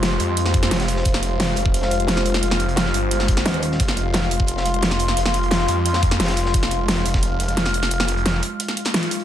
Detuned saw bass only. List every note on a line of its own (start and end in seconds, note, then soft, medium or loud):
0.00 0.18 F1 medium
0.20 0.70 F2 loud
0.71 1.04 F1 medium
1.06 1.56 F1 loud
1.57 2.41 F1 medium
2.43 2.93 F1 loud
2.94 3.44 G1 loud
3.80 4.30 F1 loud
4.31 5.16 F1 loud
5.17 5.67 F1 loud
5.68 6.18 F2 loud
6.20 6.53 F1 medium
6.54 7.04 F1 medium
7.06 7.90 F1 loud
7.91 8.41 F1 loud